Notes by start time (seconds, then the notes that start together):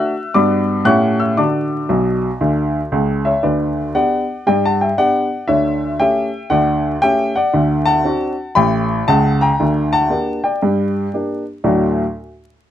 Already playing: A3 D4 F#4 E5 E6
0.34 G2 B3 D4 F#4 D5 B5 D6
0.85 A2 A3 C#4 G4 F#5 C#6 F#6
1.20 E5 E6
1.37 D3 F#4 D5 A5 D6
1.89 B1 B2
2.41 D2 D3
2.92 C#2 C#3
3.25 C#5 E5
3.43 D2 D3 B4 D5
3.94 B3 D4 G4 D5 F#5
4.47 G2 G3 D5 G5
4.65 F#5 A5
4.81 E5 G5
4.98 B3 D4 G4 D5 F#5
5.48 D2 D3 C#5 E5
5.99 A3 C#4 G4 E5 G5
6.50 D2 D3 D5 F#5
7.02 A3 C#4 G4 E5 G5
7.36 D5 F#5
7.53 D2 D3
7.85 F#5 A5
8.04 C4 D4 F#4
8.55 A1 A2 G5 B5
9.08 C#2 C#3 F#5 A5
9.41 G5 A#5
9.60 D2 D3
9.93 F#5 A5
10.10 A#3 D4 G4
10.44 D5 G5
10.63 G2 G3
11.14 A#3 D4 G4
11.64 D2 A2 F#3 A3 D4 F#4 D5